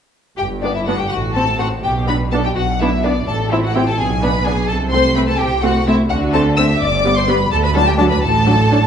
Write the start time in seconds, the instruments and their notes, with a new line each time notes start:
0.37 double bass section G1, cello section G2, violin section G4 G5
0.61 viola section B3 D4, violin section D4 D5
0.73 violin section E4 E5
0.86 viola section B3 D4, violin section F#4 F#5
0.98 violin section G4 G5
1.08 double bass section A1, cello section A2, violin section F#4 F#5
1.33 viola section C4, violin section A4 A5
1.59 viola section C4, violin section F#4 F#5
1.82 double bass section B1, cello section B2, violin section G4 G5
2.08 viola section B3 D4, violin section B4 B5
2.31 viola section B3 D4, violin section A4 A5
2.43 violin section G4 G5
2.55 double bass section B1, cello section B2, violin section F#4 F#5
2.80 viola section B3 D4, violin section E4 E5
3.03 viola section B3 D4, violin section D4 D5
3.26 double bass section A1, cello section A2, violin section A4 A5
3.51 viola section C4 E4, violin section E4 E5
3.64 violin section F#4 F#5
3.75 viola section C4 E4, violin section G4 G5
3.88 violin section A4 A5
3.98 double bass section B1, cello section B2, violin section G#4 G#5
4.22 viola section B3 D4, violin section B4 B5
4.45 viola section B3 D4, violin section G#4 G#5
4.68 double bass section C2, cello section C3, violin section A4 A5
4.91 viola section A3 C4, violin section C5 C6
5.15 viola section A3 C4, violin section B4 B5
5.28 violin section A4 A5
5.38 double bass section C2, cello section C3, violin section G4 G5
5.62 viola section A3 C4, violin section F#4 F#5
5.86 viola section A3 C4, violin section E4 E5
6.09 double bass section D2, cello section D3, violin section F#4 F#5
6.33 viola section A3 C4, violin section A4 A5
6.57 viola section A3 C4, violin section E5 E6
6.81 double bass section G1, cello section G2, violin section D5 D6
7.04 viola section G3 B3
7.17 violin section C5 C6
7.28 viola section G3 B3, violin section B4 B5
7.50 cello section D2, double bass section D2, violin section A4 A5
7.63 violin section B4 B5
7.74 viola section F#3 D4, violin section A4 A5
7.86 violin section G4 G5
7.97 viola section F#3 D4, violin section A4 A5
8.09 violin section B4 B5
8.21 double bass section A1, cello section A2, violin section A4 A5
8.46 viola section F#3 D4
8.71 viola section F#3 D4